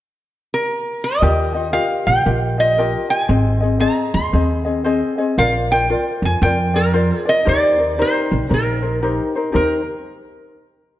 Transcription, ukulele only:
1.22 F4 G4 A#4 D#5
1.54 F4 G4 D#5
1.72 F4 G4 A#4 D#5
2.25 F4 G4 A#4 D#5
2.58 F4 G4 D#5
2.78 F4 G4 A#4 D#5
3.10 F4 G4 D#5
3.28 C4 G#4 C5 D#5
3.61 C4 G#4 D#5
3.80 C4 G#4 C5 D#5
4.33 C4 G#4 C5 D#5
4.65 C4 G#4 D#5
4.84 C4 G#4 C5 D#5
5.18 C4 G#4 D#5
5.38 F4 A#4 C5 D5
5.71 F4 A#4 D5
5.89 F4 A#4 C5 D5
6.42 F4 A#4 C5 D5
6.74 F4 A#4 D5
6.93 F4 A#4 C5 D5
7.25 F4 A#4 D5
7.45 D#4 G4 A#4 C5
7.78 D#4 A#4 C5
7.98 D#4 G4 A#4 C5
8.49 D#4 G4 A#4 C5
8.82 D#4 A#4 C5
9.02 D#4 G4 A#4 C5
9.35 D#4 A#4 C5
9.52 D#4 G4 A#4 C5

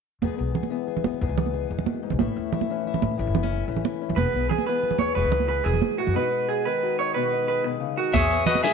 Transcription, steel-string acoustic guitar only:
0.23 E2 G#3 B3 G#4
0.38 B3
0.55 G#4
0.70 E3 B3
0.87 G#4
1.06 B3
1.22 E2 G#3 B3 G#4
1.39 B3
1.54 G#4
1.71 E2
1.86 F#2
2.03 G#2
2.19 A2 A3 C#4 E4
2.36 C#4
2.53 E4
2.70 E3 C#4
2.87 E4
3.03 C#4
3.17 A2 A3 C#4 E4
3.35 B3
3.43 C#4
3.51 E4
3.67 E3 C#4
3.84 E4
4.01 C#4
4.18 E2 G#3 B3 G#4
4.36 B3
4.52 G#4
4.68 E3 B3
4.85 G#4
5.01 B3
5.16 E2 G#3 B3 G#4
5.32 muted steel-string acoustic guitar stroke
5.48 G#4
5.65 F#2
5.82 G#2
5.98 A2
6.14 B2 G#3 D#4 F#4
6.31 D#4
6.49 F#4
6.66 D#3 D#4
6.83 F#4
6.99 D#4
7.15 B2 G#3 D#4 F#4
7.32 D#4
7.48 G#4
7.64 B2
7.80 C#3
7.97 D#3
8.13 E2
8.31 B3
8.48 G#4
8.62 E3

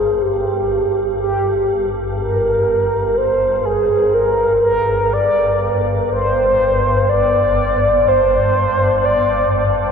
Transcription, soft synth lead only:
Already playing: G#4
0.22 G4
1.19 G4
2.19 A#4
3.17 C5
3.65 G#4
4.14 A#4
4.63 A#4
5.13 D5
6.11 C5
7.09 D5
8.08 C5
9.05 D5

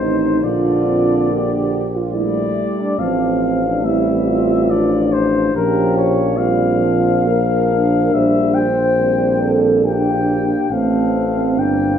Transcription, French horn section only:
0.00 D#4
0.44 F4
1.32 G4
1.95 F4
2.14 E4
2.79 D4
2.98 C4
3.65 D4
3.84 E4
4.28 F4
5.54 G4
6.38 F4
7.28 A#4
8.15 C5
9.41 A4
9.85 G4
10.71 C4

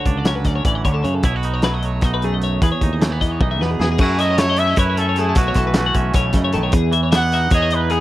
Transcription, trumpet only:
3.80 G#4
3.99 F#4
4.19 D#5
4.38 C#5
4.59 E5
4.79 B4
4.97 A4
5.20 G#4
5.36 F#4
5.77 F#4
7.16 F#5
7.54 D#5
7.74 B4
7.91 G#4

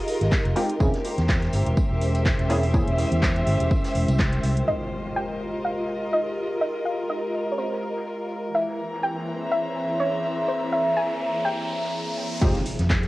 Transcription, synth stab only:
0.56 G#3 C4 D#4 F4 G4
0.80 A#3 C4 C#4 E4 G#4
2.49 A#3 C4 C#4 E4 G#4
2.74 A#3 C4 C#4 E4 G#4
12.41 G#3 C4 D#4 F4 G4

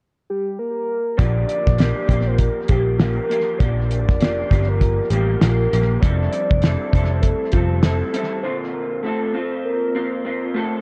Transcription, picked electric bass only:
1.19 A#1
1.67 A#1
2.09 A#1
2.70 A#1
3.60 A#1
4.09 F1
4.51 G1
5.10 A1
5.42 A#1
5.73 A#1
6.03 F1
6.51 F1
6.93 F1
7.53 F1

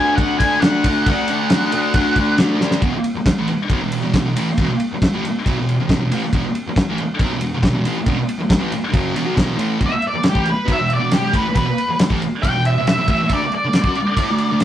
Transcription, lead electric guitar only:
Already playing: G#5
0.16 F#5
0.39 G#5
0.61 F#5
1.08 F#5
9.86 E5
10.07 D5
10.29 G4
10.50 B4
10.72 E5
10.94 D5
11.14 G4
11.36 B4
11.55 B4
12.42 G5
12.66 E5
12.88 E5
13.11 E5
13.33 D5
13.55 D5

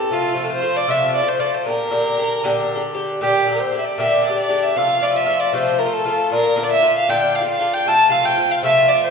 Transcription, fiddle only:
Already playing: A4
0.13 F4
0.44 A4
0.51 C5
0.76 D5
0.90 E5
1.15 D5
1.28 C5
1.40 D5
1.54 C5
1.66 A#4
3.22 G4
3.53 A#4
3.60 C5
3.78 E5
3.85 D5
3.99 E5
4.23 D5
4.37 D5
4.63 E5
4.77 F5
5.03 D5
5.16 E5
5.39 D5
5.54 C5
5.79 A#4
5.93 A4
6.31 A#4
6.63 D5
6.71 E5
6.96 F5
7.09 G5
7.35 F5
7.50 F5
7.73 G5
7.88 A5
8.11 F5
8.25 G5
8.51 F5
8.64 E5
8.89 D5
9.03 C5

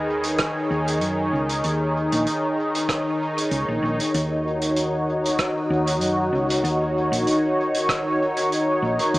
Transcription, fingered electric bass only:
Already playing: D#2
0.71 D#2
1.02 F#2
1.33 C#2
1.64 D#2
2.13 A#1
3.51 C#2
3.68 A#1
3.82 A#1
4.14 D#2
5.70 D#2
6.01 F#2
6.32 C#2
6.64 D#2
7.12 A#1
8.82 A#1
9.14 D#2

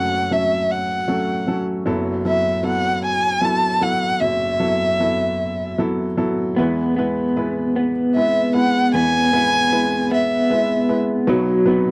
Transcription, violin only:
Already playing: F#5
0.32 E5
0.71 F#5
2.28 E5
2.66 F#5
3.05 G#5
3.44 A5
3.83 F#5
4.21 E5
8.16 E5
8.56 F#5
8.95 G#5
10.14 E5

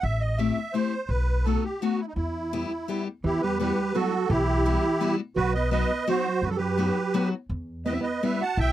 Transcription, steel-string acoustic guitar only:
0.38 A3 C4 E4 G4
0.74 A3 C4 E4 G4
1.45 A3 B3 D#4 F#4
1.82 A3 B3 D#4 F#4
2.53 G3 B3 E4 G4
2.88 G3 B3 E4 G4
3.59 G3 B3 E4 F#4
3.94 G3 B3 E4 F#4
4.66 G3 B3 E4 F#4
5.01 G3 B3 E4 F#4
5.71 F#3 B3 D#4 F#4
6.07 F#3 B3 D#4 F#4
6.78 F#3 B3 D#4 F#4
7.14 F#3 B3 D#4 F#4
7.86 G3 B3 E4 G4
8.23 G3 B3 E4 G4

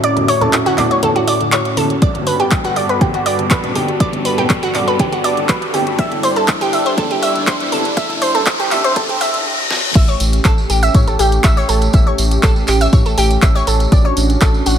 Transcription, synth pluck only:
0.04 D5
0.28 C#5
0.41 A4
0.66 F#4
0.78 D5
0.91 C#5
1.03 A4
1.16 F#4
1.28 D5
1.52 C#5
1.77 A4
2.02 D5
2.27 B4
2.40 G4
2.65 F#4
2.76 D5
2.89 B4
3.01 G4
3.14 F#4
3.26 D5
3.51 B4
3.75 G4
4.00 D5
4.25 B4
4.38 G4
4.63 F#4
4.75 D5
4.88 B4
4.99 G4
5.12 F#4
5.24 D5
5.49 B4
5.74 G4
5.99 E5
6.23 C5
6.36 A4
6.61 G4
6.73 E5
6.86 C5
6.98 A4
7.11 G4
7.23 E5
7.47 C5
7.72 A4
7.97 E5
8.22 C5
8.35 A4
8.60 G4
8.71 E5
8.84 C5
8.96 A4
9.09 G4
9.21 E5
9.95 E5
10.08 C#5
10.45 A4
10.70 G4
10.83 E5
10.95 C#5
11.08 A4
11.19 G4
11.44 E5
11.57 C#5
11.69 A4
11.94 E5
12.07 C#5
12.43 A4
12.68 G4
12.81 E5
12.93 C#5
13.06 A4
13.18 G4
13.42 E5
13.55 C#5
13.67 A4
13.92 D5
14.05 C#5
14.42 A4
14.66 F#4

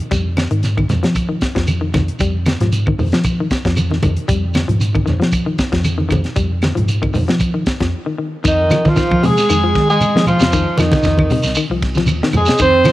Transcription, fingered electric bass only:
0.12 F2
0.51 G#2
0.90 F2
1.04 F3
1.42 muted fingered electric bass stroke
1.56 F2
1.95 F2
2.21 F2
2.60 G#2
2.98 F2
3.12 F3
3.51 muted fingered electric bass stroke
3.65 F2
4.03 F2
4.29 F2
4.68 G#2
5.07 F2
5.20 F3
5.59 muted fingered electric bass stroke
5.73 F2
6.11 F2
6.37 F2
6.76 G#2
7.14 F2
7.29 F3
7.67 muted fingered electric bass stroke
7.81 F2
8.45 F2
8.86 D#3
8.98 muted fingered electric bass stroke
9.12 F3
9.50 F2
9.76 D#3
10.15 F3
10.40 F2
10.78 F2
11.05 F2
11.44 C2
11.70 C2
12.07 D#2
12.22 muted fingered electric bass stroke
12.34 F2
12.60 F2

